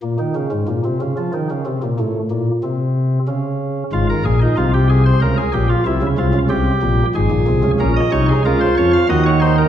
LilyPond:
<<
  \new Staff \with { instrumentName = "Pipe organ" } { \time 3/4 \key bes \minor \tempo 4 = 93 r2. | r2. | f'16 bes'16 aes'16 ees'16 f'16 g'16 aes'16 c''16 bes'16 aes'16 g'16 f'16 | e'8 f'8 g'4 aes'4 |
des'8 ees'8 f'4 ges'8 ees'8 | }
  \new Staff \with { instrumentName = "Pipe organ" } { \clef bass \time 3/4 \key bes \minor << { bes,16 ees16 des16 aes,16 bes,16 c16 des16 f16 ees16 des16 c16 bes,16 | a,8 bes,8 c4 des4 | r2. | r2. |
bes'16 ees''16 des''16 aes'16 bes'16 c''16 des''16 f''16 ees''16 des''16 c''16 bes'16 | } \\ { r2. | r2. | <aes,, aes,>8 <bes,, bes,>8 <c, c>4 <des, des>8 <bes,, bes,>8 | <c, c>16 <des, des>16 <c, c>16 <des, des>16 <c, c>8 <bes,, bes,>8 <aes,, aes,>16 <bes,, bes,>16 <c, c>16 <des, des>16 |
<bes,, bes,>8 <c, c>8 <des, des>8 <f, f>8 <ees, ees>4 | } >> }
>>